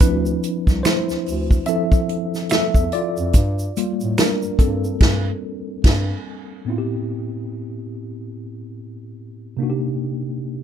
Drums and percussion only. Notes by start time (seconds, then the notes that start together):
0.00 kick, closed hi-hat, shaker
0.26 shaker
0.43 closed hi-hat, shaker
0.67 kick, snare, shaker
0.85 finger snap, snare, closed hi-hat, shaker
1.09 snare, shaker
1.26 open hi-hat, shaker
1.51 kick, shaker
1.66 closed hi-hat, shaker
1.92 kick, shaker
2.09 closed hi-hat
2.34 snare, shaker
2.49 finger snap, snare, closed hi-hat, shaker
2.74 kick, shaker
2.92 closed hi-hat
3.17 shaker
3.33 kick, closed hi-hat, shaker
3.59 shaker
3.77 closed hi-hat, shaker
4.00 shaker
4.18 finger snap, snare, closed hi-hat, shaker
4.42 shaker
4.59 kick, closed hi-hat, shaker
4.84 shaker
5.01 kick, snare, crash
5.84 kick, snare, crash